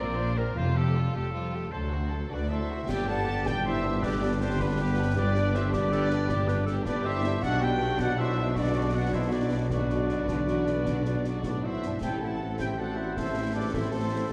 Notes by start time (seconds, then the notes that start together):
0.00 A#1 A#2 C4 F4 A#4 D5
0.19 A#3 D4 C5
0.37 C4 F4 A#4
0.56 F1 F2 G3 C4 F4 C5
0.75 A3 F4 G4 A4
0.95 G3 C4 F4
1.14 F1 F2 A3 F4 G4 A4
1.33 G3 C4 F4
1.52 A3 F4 G4
1.71 D2 F#3 D4 A4 C5
1.92 A3 C4 F#4
2.11 F#3 D4 A4
2.30 D2 A3 C4 D4 F#4 B4 D5
2.50 F#3 D4 E4 A4 C5 E5
2.69 A3 C4 F#4
2.88 G1 G2 G3 D4 G4 D5 G5, concert bass drum, snare, crash
3.07 B3 D4 G4 A4 F#5 A5
3.26 G3 D4 G4
3.46 B3 D4 G4 D5 G5, concert bass drum, snare
3.64 G3 D4 E4 G4 C5 E5
3.84 B3 D4 G4
4.02 G3 D4 G4 B4 D5, concert bass drum, snare
4.22 B3 D4 G4
4.41 G3 C4 D4 G4 A4 C5
4.59 B3 D4 G4 B4, concert bass drum, snare
4.79 G3 B3 D4 G4 B4
4.97 B3 D4 G4
5.16 G3 D4 G4 B4 D5, concert bass drum, snare
5.35 B3 D4 G4, snare
5.54 G3 D4 E4 G4 C5 E5, snare
5.72 B3 D4 G4 B4 D5, concert bass drum, snare
5.91 G3 D4 G4 A4, snare
6.10 B3 D4 G4 B4, snare
6.29 G3 D4 G4, concert bass drum, snare
6.48 B3 D4 G4 B4, snare
6.66 G3 D4 G4 A4, snare
6.85 B3 D4 G4 B4 D5, concert bass drum, snare
7.04 G3 D4 E4 G4 C5 E5
7.24 B3 D4 G4, snare
7.42 B1 B2 F#3 D4 F#4 D5 F#5, concert bass drum, snare
7.62 B3 D4 F#4 G4 E5 G5
7.80 F#3 D4 F#4
7.98 B3 D4 F#4 D5 F#5, concert bass drum, snare
8.18 F#3 D4 E4 F#4 C5 E5
8.38 B3 D4 F#4
8.55 F#3 D4 F#4 B4 D5, concert bass drum, snare
8.76 B3 D4 F#4
8.94 F#3 D4 F#4 D5 F#5
9.13 B3 D4 E4 F#4 C5 E5, concert bass drum, snare
9.31 F#3 D4 F#4 B4 D5
9.52 B3 D4 F#4
9.70 F#3 D4 F#4 B4 D5, concert bass drum, snare
9.90 B3 D4 F#4, snare
10.09 F#3 D4 F#4, snare
10.28 D3 B3 D4 F#4, concert bass drum, snare
10.48 E3 F#3 D4 F#4, snare
10.67 B3 D4 F#4, snare
10.86 D3 F#3 D4 F#4, concert bass drum, snare
11.05 B2 B3 D4 F#4, snare
11.24 F#3 D4 F#4, snare
11.43 A2 B3 D4 F#4 B4 D5, concert bass drum, snare
11.63 F#3 D4 E4 F#4 C5 E5
11.82 G2 B3 D4 F#4, snare
12.01 A1 A2 A3 C4 E4 G4 A4 E5 G5, concert bass drum, snare, crash
12.21 A3 C4 E4 A4 F#5 A5
12.40 A3 C4 A4
12.59 A3 C4 E4 G4 C5 E5 G5, concert bass drum, snare
12.78 A3 C4 F#4 A4 D5 F#5
12.97 A3 C4 E4
13.16 A3 C4 E4 A4 C5 E5, concert bass drum, snare
13.35 A3 C4 E4
13.55 A3 C4 D4 A4 B4 D5
13.73 A3 C4 E4 A4 C5, concert bass drum, snare
13.93 A3 C4 A4 C5
14.12 A3 C4 E4